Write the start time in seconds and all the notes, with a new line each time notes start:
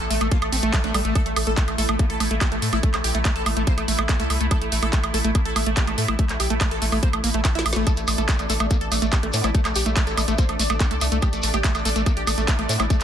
Already playing: A3 A4
0.00 A1 A4, closed hi-hat
0.11 A1 A3, open hi-hat
0.21 A1 A3, closed hi-hat, high woodblock
0.31 A#3 F4, kick, closed hi-hat
0.42 A1 A3, closed hi-hat, high woodblock
0.52 A1 C4, open hi-hat
0.63 A1 A3, closed hi-hat
0.73 G3 A3, kick, clap, closed hi-hat, high woodblock
0.84 A1 A3 D4, closed hi-hat
0.94 A1 G3 A3, open hi-hat, high woodblock
1.05 A1 A3, closed hi-hat
1.15 A3 E4 A4, kick, closed hi-hat, high woodblock
1.26 A1 A3, closed hi-hat
1.36 A1 A3, open hi-hat, high woodblock
1.47 A1 A3 A4, closed hi-hat
1.57 A3, kick, clap, closed hi-hat
1.68 A1 A3, closed hi-hat, high woodblock
1.78 A1 A3 A4, open hi-hat
1.89 A1 A3, closed hi-hat, high woodblock
1.99 A3 A#3, kick, closed hi-hat
2.10 A1 A4, closed hi-hat
2.20 A1 A3, open hi-hat, high woodblock
2.31 A1 A3, closed hi-hat
2.41 A#3 G4, kick, clap, closed hi-hat, high woodblock
2.52 A1 A3, closed hi-hat
2.62 A2 A3, open hi-hat
2.73 A1 A3 E4, closed hi-hat, high woodblock
2.83 A3, kick, closed hi-hat
2.94 A#1 A3, clap, closed hi-hat, high woodblock
3.04 A#1 G4, open hi-hat
3.15 A#1 A3, closed hi-hat
3.25 A3, kick, clap, closed hi-hat, high woodblock
3.36 A1 A4, closed hi-hat
3.46 A1 A3, open hi-hat, high woodblock
3.57 A1 A3, closed hi-hat
3.67 A#3 C5, kick, closed hi-hat
3.78 A1 A3, closed hi-hat, high woodblock
3.88 A1 A3, open hi-hat
3.99 A1 A3, closed hi-hat, high woodblock
4.09 A3 A#3, kick, clap, closed hi-hat
4.20 C2 A3 A4, closed hi-hat
4.30 C2 A3, open hi-hat, high woodblock
4.41 C2 A3, closed hi-hat
4.51 A3 A4, kick, closed hi-hat, high woodblock
4.62 A1 A3, closed hi-hat
4.72 A1 A3, open hi-hat
4.83 A1 A3 A4, closed hi-hat, high woodblock
4.93 A3, kick, clap, closed hi-hat
5.04 A1 A3, closed hi-hat, high woodblock
5.14 A1 A3 A4, open hi-hat
5.25 A1 A3, closed hi-hat
5.35 A3 A#3, kick, closed hi-hat, high woodblock
5.45 A1 A4, closed hi-hat
5.56 A1 A3, open hi-hat, high woodblock
5.66 A1 A3, closed hi-hat
5.77 A#3 G4, kick, clap, closed hi-hat
5.87 A1 A3, closed hi-hat, high woodblock
5.98 A2 A3, open hi-hat
6.08 A1 A3 E4, closed hi-hat, high woodblock
6.19 A3, kick, closed hi-hat
6.29 A#1 A3, clap, closed hi-hat
6.40 A#1 G4, open hi-hat, high woodblock
6.50 A#1 A3, closed hi-hat
6.61 A3, kick, clap, closed hi-hat, high woodblock
6.71 A1 A4, closed hi-hat
6.82 A1 A3, open hi-hat
6.92 A1 A3, open hi-hat, high woodblock
7.03 A#3 C5, kick, closed hi-hat
7.13 A1 A3, closed hi-hat, high woodblock
7.24 A1 A#3, open hi-hat
7.34 A1 A3, closed hi-hat
7.45 A3, kick, snare, clap, closed hi-hat, high woodblock
7.55 A1 E4 E5, snare, closed hi-hat
7.66 A1 A3, open hi-hat, high woodblock
7.73 A1 A3, snare, closed hi-hat
7.87 A3 D4 A4 D5, kick, closed hi-hat, high woodblock, shekere
7.97 A1 A3, closed hi-hat, shekere
8.08 A1 A3, open hi-hat, high woodblock, shekere
8.18 A1 A3 A4, closed hi-hat, shekere
8.29 A3, kick, clap, closed hi-hat, shekere
8.39 A1 A3, closed hi-hat, high woodblock, shekere
8.50 A1 A3 A4, open hi-hat, shekere
8.59 A1 A3, closed hi-hat, high woodblock, shekere
8.71 A3 A#3, kick, closed hi-hat, shekere
8.81 A1 A4, closed hi-hat
8.92 A1 A3, open hi-hat, high woodblock, shekere
9.02 A1 A3, closed hi-hat, shekere
9.13 A#3 G4, kick, clap, closed hi-hat, high woodblock, shekere
9.23 A1 A3, closed hi-hat
9.33 A2 A3 C4, open hi-hat, shekere
9.44 A1 A3 E4, closed hi-hat, high woodblock, shekere
9.55 A3, kick, closed hi-hat, shekere
9.65 A#1 A3, clap, closed hi-hat, high woodblock, shekere
9.75 A#1 G4, open hi-hat, shekere
9.86 A#1 A3 E4, closed hi-hat, shekere
9.96 A3, kick, clap, closed hi-hat, high woodblock, shekere
10.07 A1 A4, closed hi-hat, shekere
10.17 A1 A3, open hi-hat, high woodblock, shekere
10.28 A1 A3, closed hi-hat, shekere
10.38 A#3 C5, kick, closed hi-hat, shekere
10.49 A1 A3, closed hi-hat, high woodblock
10.59 A1 A3, open hi-hat, shekere
10.70 A1 A3, closed hi-hat, high woodblock, shekere
10.80 A3 A#3, kick, clap, closed hi-hat, shekere
10.91 C2 A3 A4, closed hi-hat
11.01 C2 A3, open hi-hat, high woodblock, shekere
11.11 C2 A3, closed hi-hat, shekere
11.22 A3 G4, kick, closed hi-hat, high woodblock, shekere
11.33 A1 A3, closed hi-hat, shekere
11.43 A1 A3, open hi-hat, shekere
11.54 A1 A3 G4, closed hi-hat, high woodblock, shekere
11.64 A3, kick, clap, closed hi-hat, shekere
11.75 A1 A3, closed hi-hat, high woodblock, shekere
11.85 A1 A3 A4, open hi-hat, shekere
11.96 A1 A3, closed hi-hat, shekere
12.06 A3 A#3, kick, closed hi-hat, high woodblock, shekere
12.17 A1 G4, closed hi-hat
12.27 A1 A3, open hi-hat, high woodblock, shekere
12.38 A1 A3, closed hi-hat, shekere
12.48 A#3 E4, kick, clap, closed hi-hat, shekere
12.59 A1 A3, closed hi-hat, high woodblock
12.69 A2 A3 C4, open hi-hat, shekere
12.80 A1 A3 E4, closed hi-hat, high woodblock, shekere
12.90 A3, kick, closed hi-hat, shekere
13.00 shekere